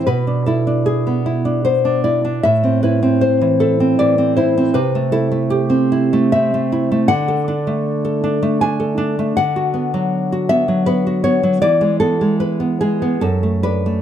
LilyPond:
\new Staff \with { instrumentName = "Nylon-string guitar" } { \time 3/4 \key a \minor \tempo 4 = 78 << { b'8 a'8 gis'4 c''8 d''8 | e''8 b'8 c''8 a'8 d''8 c''8 | b'8 a'8 g'4 e''4 | \key d \lydian fis''2 gis''4 |
fis''4. e''8 b'8 cis''8 | d''8 a'8 b'8 gis'8 a'8 b'8 | } \\ { b,16 d'16 e'16 d'8 b16 e'16 d'16 b16 d'16 e'16 d'16 | a,16 c'16 e'16 c'8 e16 e'16 c'16 e16 c'16 e'16 c'16 | c16 a16 e'16 a8 c'16 e'16 a16 c'16 a16 e'16 a16 | d16 a'16 d'16 a8 a'16 d'16 a16 d'16 a'16 d'16 a16 |
d16 fis'16 b16 fis8 fis'16 b16 fis16 b16 fis'16 b16 fis16 | e16 gis16 b16 gis8 b16 gis16 b16 fis,16 a16 d'16 a16 | } >> }